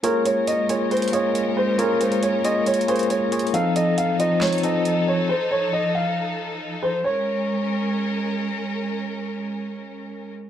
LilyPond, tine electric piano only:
\new Staff \with { instrumentName = "Tine electric piano" } { \time 4/4 \key bes \minor \tempo 4 = 137 <bes f' aes' des''>4. <bes f' aes' des''>4 <bes f' aes' ees''>4. | <bes f' aes' des''>4. <bes f' aes' des''>4 <bes f' aes' des''>4 <bes f' aes' des''>8 | <f c' ees' a'>4. <f c' ees' f'>4 <f c' ees' a'>4. | r1 |
r1 | r1 | }